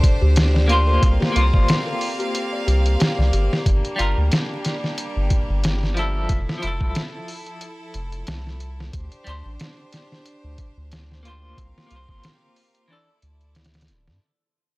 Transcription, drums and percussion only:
0.04 kick, closed hi-hat
0.36 snare, closed hi-hat
0.56 snare
0.69 closed hi-hat
1.03 kick, closed hi-hat
1.22 snare
1.36 closed hi-hat
1.54 kick
1.69 snare, closed hi-hat
2.01 open hi-hat
2.20 closed hi-hat
2.35 closed hi-hat
2.68 closed hi-hat
2.86 closed hi-hat
3.00 snare, closed hi-hat
3.20 snare
3.33 closed hi-hat
3.53 snare
3.66 kick, closed hi-hat
3.85 closed hi-hat
3.99 closed hi-hat
4.32 snare, closed hi-hat
4.65 snare, closed hi-hat
4.84 snare
4.98 closed hi-hat
5.30 kick, closed hi-hat
5.64 snare, closed hi-hat
5.83 snare
5.97 closed hi-hat
6.29 kick, closed hi-hat
6.49 snare
6.63 closed hi-hat
6.81 kick
6.95 snare, closed hi-hat
7.28 open hi-hat
7.46 closed hi-hat
7.61 closed hi-hat
7.94 closed hi-hat
8.12 closed hi-hat
8.27 snare, closed hi-hat
8.47 snare
8.60 closed hi-hat
8.80 snare
8.93 kick, closed hi-hat
9.12 closed hi-hat
9.27 closed hi-hat
9.60 snare, closed hi-hat
9.92 snare, closed hi-hat
10.12 snare
10.26 closed hi-hat
10.58 kick, closed hi-hat
10.92 snare, closed hi-hat
11.12 snare
11.25 closed hi-hat
11.58 kick, closed hi-hat
11.78 snare
11.91 closed hi-hat
12.09 kick
12.24 snare, closed hi-hat
12.56 open hi-hat
12.75 closed hi-hat
13.22 closed hi-hat
13.41 closed hi-hat
13.55 snare, closed hi-hat
13.64 snare, closed hi-hat
13.74 snare, closed hi-hat
13.81 snare, closed hi-hat
13.88 closed hi-hat
14.08 snare

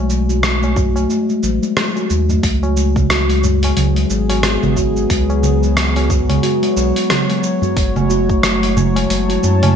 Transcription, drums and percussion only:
0.10 cabasa
0.29 cabasa
0.43 cross-stick, cabasa
0.63 tabla na, cabasa
0.76 kick, tabla tin, tabla ge, cabasa
0.96 tabla na, tabla tin, cabasa
1.10 cabasa
1.29 cabasa
1.43 cabasa
1.63 cabasa
1.77 cross-stick, cabasa
1.96 tabla na, cabasa
2.10 cabasa
2.30 tabla ge, cabasa
2.43 kick, open hi-hat, cabasa
2.63 tabla na, cabasa
2.77 cabasa
2.96 kick, low conga, cabasa
3.10 cross-stick, open hi-hat, cabasa
3.30 open hi-hat, cabasa
3.44 tabla tin, tabla ge, cabasa
3.63 open hi-hat, tabla na, tabla tin, cabasa
3.77 open hi-hat, low conga, cabasa
3.96 open hi-hat, cabasa
4.10 tabla tin, cabasa
4.29 open hi-hat, tabla na, cabasa
4.43 cross-stick, open hi-hat, cabasa
4.63 low conga, cabasa
4.76 kick, tabla tin, cabasa
4.96 cabasa
5.10 kick, open hi-hat, cabasa
5.30 tabla na, cabasa
5.43 low conga, cabasa
5.63 cabasa
5.77 cross-stick, open hi-hat, cabasa
5.96 open hi-hat, tabla na, cabasa
6.10 kick, tabla tin, tabla ge, cabasa
6.29 open hi-hat, tabla na, tabla tin, low conga, cabasa
6.43 open hi-hat, cabasa
6.63 open hi-hat, cabasa
6.77 cabasa
6.96 open hi-hat, cabasa
7.10 cross-stick, open hi-hat, low conga, cabasa
7.30 open hi-hat, tabla na, cabasa
7.43 cabasa
7.62 tabla ge, cabasa
7.77 kick, open hi-hat, cabasa
7.96 tabla na, low conga, cabasa
8.10 cabasa
8.30 kick, cabasa
8.43 cross-stick, open hi-hat, cabasa
8.63 open hi-hat, cabasa
8.77 tabla tin, tabla ge, low conga, cabasa
8.96 open hi-hat, tabla na, tabla tin, cabasa
9.10 open hi-hat, cabasa
9.30 open hi-hat, cabasa
9.43 tabla tin, cabasa
9.63 open hi-hat, tabla na, low conga, cabasa

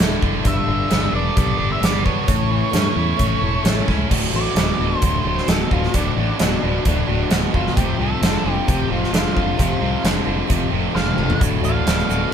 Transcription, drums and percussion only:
0.00 snare, closed hi-hat
0.22 kick
0.45 kick, closed hi-hat
0.91 snare, closed hi-hat
1.37 kick, closed hi-hat
1.83 snare, closed hi-hat
2.06 kick
2.28 kick, closed hi-hat
2.73 snare, closed hi-hat
3.19 kick, closed hi-hat
3.65 snare, closed hi-hat
3.88 kick, snare
4.11 kick, crash
4.56 snare, closed hi-hat
5.02 kick, closed hi-hat
5.37 snare
5.48 snare, closed hi-hat
5.71 kick
5.84 snare
5.94 kick, closed hi-hat
6.39 snare, closed hi-hat
6.85 kick, closed hi-hat
7.31 snare, closed hi-hat
7.54 kick
7.67 snare
7.77 kick, closed hi-hat
8.23 snare, closed hi-hat
8.68 kick, closed hi-hat
9.04 snare
9.14 snare, closed hi-hat
9.37 kick
9.59 kick, closed hi-hat
10.05 snare, closed hi-hat
10.50 kick, closed hi-hat
10.96 snare
11.07 high tom
11.18 mid tom
11.30 floor tom
11.41 kick, closed hi-hat, shaker
11.64 shaker
11.87 snare, closed hi-hat, shaker
11.99 shaker
12.10 shaker

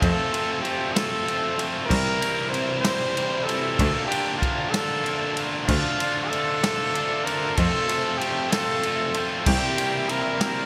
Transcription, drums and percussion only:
0.02 kick, ride
0.34 ride
0.65 ride
0.96 snare, ride
1.28 ride
1.59 ride
1.90 kick, crash
2.22 ride
2.54 ride
2.85 snare, ride
3.17 ride
3.49 ride
3.79 kick, ride
4.12 ride
4.42 kick, ride
4.74 snare, ride
5.06 ride
5.37 ride
5.68 kick, crash
6.00 ride
6.33 ride
6.64 snare, ride
6.95 ride
7.27 ride
7.57 kick, ride
7.89 ride
8.21 ride
8.52 snare, ride
8.83 ride
9.14 ride
9.46 kick, crash
9.78 ride
10.09 ride
10.41 snare, ride

